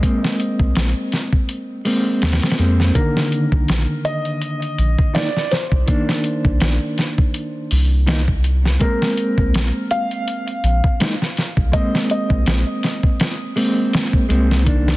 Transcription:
0.00 1.81 G#3 medium
0.00 1.83 A#3 medium
0.00 0.72 D#5 medium
0.00 kick loud
0.00 closed hi-hat medium
0.05 1.83 C4 medium
0.24 snare medium
0.40 closed hi-hat medium
0.59 0.74 C2 medium
0.59 kick medium
0.75 0.94 A#1 medium
0.75 snare loud
0.75 closed hi-hat medium
1.12 snare soft
1.12 closed hi-hat medium
1.33 kick medium
1.49 closed hi-hat medium
1.85 2.54 G#3 medium
1.85 2.55 A#3 medium
1.85 2.55 C4 loud
1.85 open hi-hat medium
2.22 2.40 D#2 medium
2.22 snare medium
2.22 closed hi-hat medium
2.32 snare medium
2.32 closed hi-hat medium
2.42 snare medium
2.42 closed hi-hat medium
2.50 snare medium
2.50 closed hi-hat medium
2.58 2.92 F2 loud
2.58 2.91 G#3 loud
2.58 2.92 A#3 medium
2.58 2.92 C4 loud
2.58 closed hi-hat medium
2.80 snare soft
2.93 5.10 D#3 medium
2.93 5.11 A#3 medium
2.93 4.01 A#4 medium
2.93 kick loud
2.93 closed hi-hat medium
2.97 5.12 D3 medium
3.17 snare medium
3.32 closed hi-hat medium
3.52 3.66 C2 loud
3.52 kick medium
3.68 3.86 A#1 medium
3.68 snare loud
3.68 closed hi-hat medium
4.05 5.11 D#5 loud
4.05 closed hi-hat medium
4.25 closed hi-hat soft
4.42 closed hi-hat medium
4.62 closed hi-hat soft
4.78 4.96 A#1 medium
4.78 closed hi-hat medium
4.99 kick medium
5.13 5.27 D#3 medium
5.13 5.28 A#3 medium
5.13 5.28 D#4 loud
5.13 5.52 D5 loud
5.13 snare loud
5.13 closed hi-hat medium
5.37 snare soft
5.51 7.67 C5 medium
5.51 snare soft
5.51 closed hi-hat medium
5.72 5.86 C2 medium
5.72 kick loud
5.86 8.03 D#3 medium
5.86 8.04 A#3 medium
5.86 kick loud
5.86 closed hi-hat medium
5.90 8.05 D4 medium
6.09 snare medium
6.24 closed hi-hat medium
6.45 6.59 C2 loud
6.45 kick medium
6.60 6.79 A#1 medium
6.60 snare loud
6.60 closed hi-hat medium
6.98 snare soft
6.98 closed hi-hat medium
7.18 kick medium
7.34 closed hi-hat medium
7.71 8.78 C2 loud
7.71 open hi-hat medium
8.06 8.20 D#3 loud
8.06 8.20 A#3 medium
8.06 8.21 D#4 loud
8.06 snare loud
8.06 closed hi-hat medium
8.28 kick medium
8.44 closed hi-hat medium
8.65 snare soft
8.79 10.96 G#3 medium
8.79 10.96 A#3 medium
8.79 10.98 C4 medium
8.79 9.87 A#4 loud
8.79 kick loud
8.79 closed hi-hat medium
9.02 snare medium
9.17 closed hi-hat medium
9.38 9.52 C2 loud
9.38 kick medium
9.54 9.72 A#1 medium
9.54 snare loud
9.54 closed hi-hat medium
9.91 11.79 F5 loud
9.91 closed hi-hat medium
10.11 closed hi-hat soft
10.28 closed hi-hat medium
10.48 closed hi-hat soft
10.63 10.81 A#1 loud
10.63 closed hi-hat medium
10.84 kick medium
11.00 11.13 G#3 medium
11.00 11.13 A#3 medium
11.00 11.14 D#4 loud
11.00 snare loud
11.00 closed hi-hat medium
11.22 snare soft
11.37 snare soft
11.37 closed hi-hat medium
11.57 11.72 C2 medium
11.57 kick loud
11.72 13.52 G#3 medium
11.72 13.53 A#3 medium
11.72 12.07 D#5 loud
11.72 kick loud
11.72 closed hi-hat medium
11.76 13.54 C4 medium
11.95 snare medium
12.10 13.53 D#5 medium
12.10 closed hi-hat medium
12.30 12.45 C2 loud
12.30 kick loud
12.46 12.64 A#1 medium
12.46 snare loud
12.46 closed hi-hat medium
12.83 snare soft
12.83 closed hi-hat medium
13.03 kick medium
13.20 snare loud
13.20 closed hi-hat medium
13.56 14.25 G#3 medium
13.56 14.26 A#3 medium
13.56 14.26 C4 loud
13.56 open hi-hat medium
13.93 snare loud
13.93 closed hi-hat medium
14.13 kick medium
14.29 14.97 C2 loud
14.29 14.62 G#3 loud
14.29 14.62 A#3 medium
14.29 14.63 C4 loud
14.29 closed hi-hat medium
14.51 snare soft
14.64 14.97 D#3 medium
14.64 14.97 A#3 medium
14.64 kick loud
14.64 closed hi-hat medium
14.68 14.97 D4 medium
14.88 snare medium

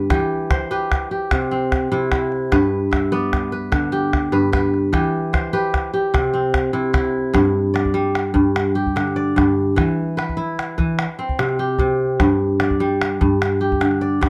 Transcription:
0.00 0.16 G2 medium
0.00 0.16 D3 medium
0.00 0.16 B3 medium
0.00 0.57 B4 medium
0.10 1.36 E3 medium
0.10 0.70 G4 medium
0.10 calabash thump medium
0.10 calabash click medium
0.20 calabash click soft
0.51 1.70 C5 medium
0.51 calabash thump medium
0.51 calabash click medium
0.71 1.11 G4 medium
0.71 1.38 B4 medium
0.92 calabash thump medium
0.92 calabash click medium
1.11 2.52 G4 medium
1.31 1.91 C3 medium
1.31 calabash thump medium
1.31 calabash click medium
1.42 calabash click soft
1.51 2.58 C4 medium
1.51 calabash click soft
1.72 calabash thump medium
1.72 calabash click medium
1.92 2.57 C3 medium
1.92 2.11 E4 medium
2.11 3.68 E4 medium
2.11 calabash thump medium
2.11 calabash click medium
2.32 calabash click soft
2.52 4.31 G2 medium
2.52 3.52 B4 medium
2.52 calabash thump medium
2.52 calabash click medium
2.63 calabash click soft
2.91 3.95 E5 medium
2.91 calabash thump medium
2.91 calabash click medium
3.12 4.98 B3 medium
3.12 4.23 D5 medium
3.33 calabash thump medium
3.33 calabash click medium
3.52 4.32 B4 medium
3.72 4.98 D3 medium
3.72 calabash thump medium
3.72 calabash click medium
3.83 calabash click soft
3.92 4.92 G4 medium
3.92 calabash click soft
4.13 calabash thump medium
4.13 calabash click medium
4.32 4.98 G2 medium
4.32 4.52 B4 medium
4.52 5.39 B4 medium
4.52 calabash thump medium
4.52 calabash click medium
4.74 calabash click soft
4.93 6.18 E3 medium
4.93 5.53 G4 medium
4.93 calabash thump medium
4.93 calabash click medium
5.04 calabash click soft
5.33 6.52 C5 medium
5.33 calabash thump medium
5.33 calabash click medium
5.53 5.93 G4 medium
5.53 6.20 B4 medium
5.74 calabash thump medium
5.74 calabash click medium
5.93 7.35 G4 medium
6.14 6.72 C3 medium
6.14 calabash thump medium
6.14 calabash click medium
6.24 calabash click soft
6.34 8.14 C4 medium
6.54 calabash thump medium
6.54 calabash click medium
6.73 7.39 C3 medium
6.73 6.93 E4 medium
6.93 8.50 E4 medium
6.93 calabash thump medium
6.93 calabash click medium
7.05 calabash click soft
7.34 8.33 G2 medium
7.34 calabash thump medium
7.34 calabash click medium
7.45 calabash click soft
7.74 8.85 D5 medium
7.74 calabash click medium
7.85 calabash thump soft
7.94 9.01 G3 medium
8.15 calabash click medium
8.34 9.35 G2 medium
8.34 calabash thump medium
8.56 calabash click medium
8.75 10.16 G4 medium
8.86 calabash thump soft
8.96 9.82 D3 medium
8.96 calabash click medium
9.08 calabash click soft
9.16 10.27 D5 medium
9.36 9.82 G2 medium
9.36 calabash thump medium
9.36 calabash click medium
9.76 10.77 E3 medium
9.76 calabash thump medium
9.76 calabash click medium
9.89 calabash click soft
10.17 11.25 B4 medium
10.17 calabash click medium
10.29 calabash thump soft
10.37 11.94 E4 medium
10.59 calabash click medium
10.78 11.03 E3 medium
10.78 calabash thump medium
10.99 calabash click medium
11.19 12.99 C4 medium
11.29 calabash thump medium
11.39 11.78 C3 medium
11.39 calabash click medium
11.49 calabash click soft
11.59 13.00 G4 medium
11.79 12.25 C3 medium
11.79 calabash thump medium
12.20 13.20 G2 medium
12.20 calabash thump medium
12.20 calabash click medium
12.30 calabash click soft
12.60 13.71 D5 medium
12.60 calabash click medium
12.71 calabash thump soft
12.80 13.87 G3 medium
13.02 calabash click medium
13.21 14.20 G2 medium
13.21 calabash thump medium
13.42 calabash click medium
13.61 14.29 G4 medium
13.72 calabash thump medium
13.81 14.29 D3 medium
13.81 calabash click medium
13.91 calabash click soft
14.01 14.29 D5 medium
14.21 14.29 G2 medium
14.21 calabash thump medium
14.21 calabash click medium

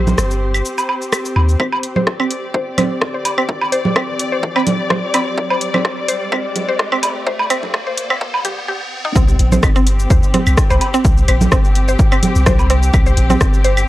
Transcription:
0.00 0.14 A#1 medium
0.00 8.68 C4 medium
0.00 8.68 G4 medium
0.00 2.28 C5 medium
0.07 low conga medium
0.07 shaker soft
0.18 0.62 G1 medium
0.18 cross-stick medium
0.18 shaker medium
0.31 shaker soft
0.54 high woodblock medium
0.54 shaker soft
0.65 shaker medium
0.78 low woodblock medium
0.78 shaker soft
0.89 low woodblock medium
1.02 shaker soft
1.12 cross-stick medium
1.12 high woodblock medium
1.12 shaker medium
1.25 shaker soft
1.36 1.56 D#2 medium
1.36 low woodblock medium
1.49 shaker soft
1.60 1.66 C4 loud
1.60 kick loud
1.60 riser medium
1.60 high woodblock medium
1.73 low woodblock medium
1.83 closed hi-hat medium
1.96 2.01 C5 medium
1.96 low conga medium
2.07 kick loud
2.07 cross-stick medium
2.15 8.68 D5 medium
2.20 2.25 C4 loud
2.20 high woodblock medium
2.31 closed hi-hat medium
2.54 2.60 C5 medium
2.54 kick loud
2.78 2.84 C4 loud
2.78 closed hi-hat medium
2.78 low conga medium
2.78 high woodblock medium
3.01 kick loud
3.01 cross-stick loud
3.14 3.19 C5 medium
3.25 closed hi-hat medium
3.25 low woodblock medium
3.38 3.43 C4 loud
3.38 high woodblock medium
3.49 kick loud
3.61 low woodblock medium
3.72 3.78 C5 medium
3.72 closed hi-hat loud
3.85 low conga medium
3.96 4.02 C4 loud
3.96 kick loud
3.96 cross-stick medium
3.96 high woodblock medium
4.20 closed hi-hat medium
4.32 4.37 C5 medium
4.43 kick loud
4.56 4.61 C4 loud
4.56 high woodblock medium
4.56 low woodblock medium
4.67 closed hi-hat loud
4.67 low conga medium
4.90 4.96 C5 medium
4.90 kick loud
4.90 cross-stick loud
4.90 low conga medium
5.14 5.20 C4 loud
5.14 closed hi-hat loud
5.14 high woodblock medium
5.14 low woodblock medium
5.38 kick loud
5.50 5.55 C5 medium
5.50 low woodblock medium
5.61 closed hi-hat loud
5.74 5.79 C4 loud
5.74 low conga medium
5.74 high woodblock medium
5.85 kick loud
5.85 cross-stick medium
6.08 6.14 C5 medium
6.08 closed hi-hat loud
6.32 6.38 C4 loud
6.32 kick loud
6.32 high woodblock medium
6.56 closed hi-hat medium
6.56 low conga medium
6.69 6.74 C5 medium
6.79 kick loud
6.79 cross-stick loud
6.92 6.97 C4 loud
6.92 high woodblock medium
7.03 closed hi-hat loud
7.03 low woodblock medium
7.27 7.33 C5 medium
7.27 kick loud
7.39 low woodblock medium
7.50 7.56 C4 loud
7.50 closed hi-hat loud
7.50 high woodblock medium
7.63 low conga medium
7.74 kick loud
7.74 cross-stick medium
7.87 7.92 C5 medium
7.98 closed hi-hat loud
8.10 8.15 C4 loud
8.10 high woodblock medium
8.21 kick loud
8.34 low woodblock medium
8.45 8.48 G4 medium
8.45 closed hi-hat loud
8.45 low conga medium
8.68 8.77 G4 medium
9.05 9.12 D#4 loud
9.16 9.35 C2 loud
9.16 9.22 C4 loud
9.16 13.88 C4 loud
9.16 kick loud
9.16 shaker medium
9.28 shaker soft
9.39 9.59 A#1 medium
9.39 closed hi-hat medium
9.52 9.57 C5 medium
9.52 low conga medium
9.52 shaker soft
9.63 10.07 G1 medium
9.63 kick loud
9.63 cross-stick medium
9.63 high woodblock medium
9.63 shaker medium
9.76 9.81 C4 loud
9.76 shaker soft
9.86 13.88 G4 medium
9.86 closed hi-hat medium
9.99 shaker soft
10.10 10.21 D#2 medium
10.10 10.16 C5 medium
10.10 kick loud
10.10 shaker medium
10.23 shaker soft
10.34 10.40 C4 loud
10.34 closed hi-hat medium
10.34 low conga medium
10.47 10.56 C2 loud
10.47 high woodblock medium
10.47 shaker soft
10.57 kick loud
10.57 cross-stick loud
10.57 shaker medium
10.70 10.79 C2 medium
10.70 10.75 C5 medium
10.70 low woodblock medium
10.70 shaker soft
10.81 closed hi-hat loud
10.81 low woodblock medium
10.94 10.99 C4 loud
10.94 shaker soft
11.05 11.24 C2 loud
11.05 kick loud
11.05 shaker medium
11.17 shaker soft
11.28 11.48 A#1 medium
11.28 11.34 C5 medium
11.28 closed hi-hat loud
11.28 high woodblock medium
11.41 low conga medium
11.41 shaker soft
11.52 11.96 G1 medium
11.52 11.58 C4 loud
11.52 kick loud
11.52 cross-stick medium
11.52 shaker medium
11.65 shaker soft
11.75 closed hi-hat loud
11.88 11.93 C5 medium
11.88 shaker soft
11.99 kick loud
11.99 shaker medium
12.12 12.17 C4 loud
12.12 high woodblock medium
12.12 shaker soft
12.23 closed hi-hat loud
12.23 low conga medium
12.35 12.91 C2 medium
12.35 shaker soft
12.46 12.52 C5 medium
12.46 kick loud
12.46 cross-stick loud
12.46 low conga medium
12.46 shaker medium
12.59 low woodblock medium
12.59 shaker soft
12.70 12.76 C4 loud
12.70 closed hi-hat loud
12.83 shaker soft
12.93 13.13 C2 loud
12.93 kick loud
12.93 high woodblock medium
12.93 shaker medium
13.06 13.11 C5 medium
13.06 shaker soft
13.17 13.37 A#1 medium
13.17 closed hi-hat loud
13.30 13.35 C4 loud
13.30 low conga medium
13.30 shaker soft
13.41 13.85 G1 medium
13.41 kick loud
13.41 cross-stick medium
13.41 shaker soft
13.54 shaker soft
13.64 13.70 C5 medium
13.64 closed hi-hat loud
13.77 high woodblock medium
13.77 shaker soft

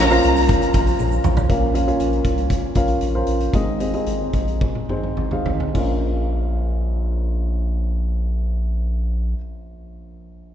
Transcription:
0.00 0.20 A#1 loud
0.00 0.20 A#2 medium
0.00 0.10 C#4 medium
0.00 0.10 F4 medium
0.00 0.11 A#4 medium
0.00 0.11 C5 medium
0.00 0.11 F5 medium
0.00 1.00 A#5 loud
0.00 snare loud
0.00 hi-hat pedal medium
0.10 1.03 C#4 medium
0.10 1.03 F4 medium
0.10 1.03 A#4 medium
0.10 1.03 C5 medium
0.10 1.03 F5 loud
0.10 hi-hat pedal medium
0.10 open hi-hat soft
0.10 shaker medium
0.23 0.55 C2 loud
0.23 hi-hat pedal medium
0.23 open hi-hat medium
0.23 shaker medium
0.36 hi-hat pedal medium
0.36 open hi-hat medium
0.36 shaker medium
0.48 kick loud
0.48 hi-hat pedal medium
0.48 open hi-hat medium
0.48 shaker medium
0.62 hi-hat pedal medium
0.62 shaker medium
0.73 0.95 A#1 loud
0.73 kick medium
0.73 hi-hat pedal medium
0.73 open hi-hat medium
0.73 shaker medium
0.87 open hi-hat medium
0.87 shaker soft
0.99 1.20 A#1 loud
0.99 high tom medium
0.99 shaker medium
1.12 shaker medium
1.24 1.45 A#1 medium
1.24 mid tom loud
1.24 shaker medium
1.37 floor tom medium
1.37 shaker medium
1.49 1.91 A#1 loud
1.49 2.21 A#2 medium
1.49 1.72 C#4 medium
1.49 1.72 F4 medium
1.49 1.72 A#4 medium
1.49 1.73 F5 medium
1.49 kick medium
1.49 closed hi-hat medium
1.74 1.86 C#4 medium
1.74 1.86 F4 medium
1.74 1.86 A#4 medium
1.74 1.86 F5 medium
1.74 closed hi-hat medium
1.87 2.68 C#4 medium
1.87 2.69 F4 medium
1.87 2.69 A#4 medium
1.87 2.69 F5 medium
1.87 closed hi-hat soft
2.00 2.21 A#1 loud
2.00 closed hi-hat medium
2.13 closed hi-hat soft
2.24 2.56 C2 medium
2.24 kick medium
2.24 closed hi-hat medium
2.37 closed hi-hat soft
2.50 kick medium
2.50 closed hi-hat medium
2.75 2.97 A#1 medium
2.75 3.11 C#4 medium
2.75 3.11 F4 medium
2.75 3.11 A#4 medium
2.75 3.12 F5 medium
2.75 kick medium
2.75 closed hi-hat medium
2.88 closed hi-hat soft
3.01 3.23 A#1 medium
3.01 closed hi-hat medium
3.15 3.50 C#4 medium
3.15 3.51 F4 medium
3.15 3.51 A#4 medium
3.15 3.51 C5 medium
3.27 3.49 A#1 medium
3.27 closed hi-hat medium
3.40 closed hi-hat soft
3.53 3.97 G#1 loud
3.53 4.30 G#2 medium
3.53 3.78 C4 medium
3.53 3.78 D#4 medium
3.53 3.78 G#4 medium
3.53 3.78 D#5 medium
3.53 kick medium
3.53 closed hi-hat medium
3.80 3.92 C4 medium
3.80 3.92 D#4 medium
3.80 3.93 G#4 medium
3.80 3.93 D#5 medium
3.80 closed hi-hat medium
3.93 4.81 C4 medium
3.93 4.82 D#4 medium
3.93 4.82 G#4 medium
3.93 4.82 D#5 medium
3.93 closed hi-hat soft
4.06 4.29 G#1 loud
4.06 closed hi-hat medium
4.33 4.67 A#1 medium
4.33 kick medium
4.33 closed hi-hat medium
4.48 closed hi-hat soft
4.61 kick medium
4.61 high tom soft
4.75 high tom soft
4.89 5.12 G#1 medium
4.89 5.28 C4 medium
4.89 5.28 D#4 medium
4.89 5.29 G#4 medium
4.89 5.29 C5 medium
4.89 mid tom medium
5.04 mid tom soft
5.17 5.41 G#1 medium
5.17 mid tom medium
5.31 5.72 C4 medium
5.31 5.72 D#4 medium
5.31 5.72 G#4 medium
5.31 5.72 F5 medium
5.31 mid tom medium
5.46 5.70 G#1 medium
5.46 floor tom medium
5.60 floor tom medium
5.74 9.34 A#1 medium
5.74 9.35 A#1 medium
5.74 9.33 C#4 medium
5.74 9.35 F4 medium
5.74 9.37 A#4 medium
5.74 kick medium
5.74 splash medium
5.78 9.38 F5 medium

